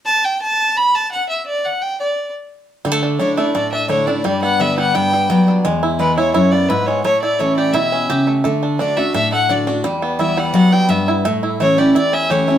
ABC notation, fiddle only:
X:1
M:4/4
L:1/8
Q:1/4=172
K:D
V:1 name="Fiddle"
a g a2 b a f e | d f g d2 z3 | z2 c d d e c d | d f e f g3 z |
z2 B c c d B c | c d c d e3 z | z2 d e e f d z | z2 e f f g e z |
z2 c d d e c2 |]